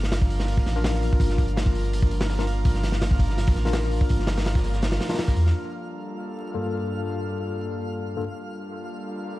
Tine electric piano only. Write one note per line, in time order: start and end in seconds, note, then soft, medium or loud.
0.76 2.36 D4 medium
0.76 2.36 F4 medium
0.76 2.36 A#4 loud
2.39 2.44 D4 medium
2.39 2.44 F4 medium
2.39 2.44 A#4 medium
3.65 5.08 D4 medium
3.65 5.08 F4 medium
3.65 5.08 A#4 loud
5.10 5.15 D4 medium
5.10 5.15 F4 medium
5.10 5.15 A#4 loud
6.54 8.15 G2 medium
6.54 8.15 A#3 medium
6.54 8.15 F4 medium
6.54 8.15 A4 medium
8.17 8.23 G2 medium
8.17 8.23 A#3 medium
8.17 8.23 F4 medium
8.17 8.23 A4 medium